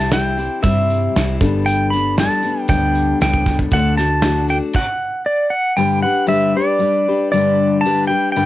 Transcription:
Already playing: picked electric bass C2, steel-string acoustic guitar C3 G3 C4 E4 G4, pedal steel guitar A5
0.11 steel-string acoustic guitar G3 C4 E4 G4, pedal steel guitar G5, snare, closed hi-hat
0.38 steel-string acoustic guitar C4 E4 G4, closed hi-hat
0.62 picked electric bass G2, steel-string acoustic guitar C3 G3 C4 E4 G4, pedal steel guitar E5, kick, closed hi-hat
0.90 closed hi-hat
1.15 picked electric bass C2, steel-string acoustic guitar G3 C4 E4 G4, snare, closed hi-hat
1.41 picked electric bass G1, steel-string acoustic guitar G2 D3 G3 B3 D4 A4, kick, snare, closed hi-hat
1.66 pedal steel guitar G5, closed hi-hat
1.90 steel-string acoustic guitar B3 D4 A4, pedal steel guitar B5, closed hi-hat
1.95 steel-string acoustic guitar G3
2.18 steel-string acoustic guitar G3 B3 D4 A4, pedal steel guitar A5, snare, closed hi-hat
2.43 steel-string acoustic guitar G3 B3 D4 A4, closed hi-hat
2.68 picked electric bass D2, steel-string acoustic guitar G2 D3 G3 B3 D4 A4, pedal steel guitar G5, kick, closed hi-hat
2.95 closed hi-hat
3.21 picked electric bass C#2, steel-string acoustic guitar G3 B3 D4 A4, pedal steel guitar G5, snare, closed hi-hat
3.34 kick
3.46 kick, snare, closed hi-hat
3.59 kick
3.71 picked electric bass D2, steel-string acoustic guitar D3 A3 D4 F#4 A4, pedal steel guitar F#5, kick, closed hi-hat
3.97 steel-string acoustic guitar D4 F#4 A4, pedal steel guitar A5, snare, closed hi-hat
4.22 steel-string acoustic guitar A3 D4 F#4 A4, snare, closed hi-hat
4.48 steel-string acoustic guitar D4 F#4 A4, pedal steel guitar G5, closed hi-hat
4.73 pedal steel guitar F#5, kick, crash
5.26 pedal steel guitar D5
5.50 pedal steel guitar F#5
5.77 steel-string acoustic guitar G2 D3 G3 D4 G4 B4, pedal steel guitar G5
6.03 steel-string acoustic guitar G3 D4 G4 B4, pedal steel guitar F#5
6.27 steel-string acoustic guitar G2 D3 G3 D4 G4 B4, pedal steel guitar E5
6.55 steel-string acoustic guitar G3 D4 G4 B4, pedal steel guitar D5
6.79 steel-string acoustic guitar G3 D4 G4 B4
7.08 steel-string acoustic guitar G3 D4 G4 B4
7.32 steel-string acoustic guitar G2 D3 G3 D4 G4 B4, pedal steel guitar D5
7.81 steel-string acoustic guitar G2, pedal steel guitar A5
7.85 steel-string acoustic guitar D3 G3 D4 G4 B4
8.07 steel-string acoustic guitar G3 D4 G4 B4, pedal steel guitar G5
8.32 steel-string acoustic guitar G2 D4, pedal steel guitar G5
8.36 steel-string acoustic guitar D3 G3 G4 B4

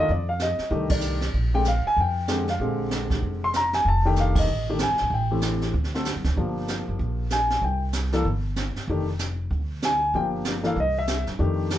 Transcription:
0.09 upright bass F2, grand piano D5, brush sweep, kick
0.29 grand piano F5
0.39 grand piano D#5, snare, hi-hat pedal
0.58 muted upright bass stroke, snare
0.70 upright bass C2, grand piano D#3 A3 D4 G4, brush sweep, kick
0.90 grand piano D5, kick, ride
1.01 hi-hat pedal
1.21 snare
1.34 upright bass A#1, brush sweep, kick
1.54 grand piano D3 G#3 C4 G4 G5
1.65 grand piano F5, snare, hi-hat pedal
1.87 grand piano G#5
1.97 upright bass F2, grand piano G5, brush sweep, kick
2.28 grand piano D3 G#3 C4 G4, snare, hi-hat pedal
2.48 grand piano F5, snare
2.59 upright bass A#1, grand piano D3 G#3 C4 G4, brush sweep, kick
2.91 snare, hi-hat pedal
3.10 kick, snare
3.22 upright bass F1, brush sweep, kick
3.44 grand piano C6
3.53 grand piano A#5, snare, hi-hat pedal
3.73 grand piano G#5, snare
3.85 upright bass F1, grand piano A5, brush sweep, kick
4.05 grand piano D#3 A3 D4 G4 G5
4.16 grand piano F5, snare, hi-hat pedal
4.35 grand piano D#5, kick, ride
4.47 upright bass A1, brush sweep
4.70 grand piano D#3 A3 D4 G4
4.79 snare, hi-hat pedal
4.83 grand piano G#5
4.91 upright bass C2
4.97 upright bass A#1, snare
5.10 upright bass A1, brush sweep, kick
5.14 grand piano G5
5.31 grand piano E3 A3 C4 G4
5.41 snare, hi-hat pedal
5.61 snare
5.74 upright bass D2, brush sweep, kick
5.84 snare
5.95 grand piano D3 A3 C4 A4, snare
6.05 snare, hi-hat pedal
6.15 upright bass F#2
6.24 upright bass D2, kick, snare
6.37 upright bass G1, grand piano F3 A#3 D4 G4, brush sweep, kick
6.68 snare, hi-hat pedal
6.88 upright bass F#1
6.99 upright bass A#1, brush sweep, kick
7.30 grand piano G#5, snare, hi-hat pedal
7.50 snare
7.61 upright bass C2, grand piano G5, brush sweep, kick
7.93 snare, hi-hat pedal
8.12 grand piano E3 A#3 D4 A4, snare
8.25 upright bass G1, brush sweep, kick
8.56 snare, hi-hat pedal
8.76 muted upright bass stroke, snare
8.87 upright bass F1, grand piano D#3 A3 D4 G4, brush sweep, kick
9.19 snare, hi-hat pedal
9.50 upright bass D2, brush sweep, kick
9.82 grand piano G#5, snare, hi-hat pedal
10.14 upright bass G1, grand piano F3 A#3 D4 G4 G5, brush sweep, kick
10.45 snare, hi-hat pedal
10.63 grand piano E3 A#3 D4 A4 F5, snare
10.76 upright bass C2, grand piano D#5, brush sweep, kick
10.99 grand piano E5
11.07 snare, hi-hat pedal
11.27 upright bass F#2, snare
11.39 upright bass F2, grand piano D#3 A3 D4 G4, brush sweep, kick
11.70 snare, hi-hat pedal

